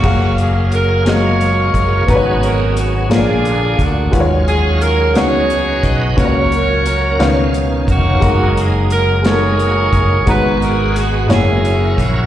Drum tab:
CC |x-----|------|------|------|
HH |-xxxxx|xxxxxx|xxxxxx|xxxxxx|
SD |---o--|---o--|---o--|--oo--|
BD |o----o|o----o|o----o|o----o|

CC |------|------|
HH |xxxxxx|xxxxxx|
SD |---o--|--oo--|
BD |o----o|o----o|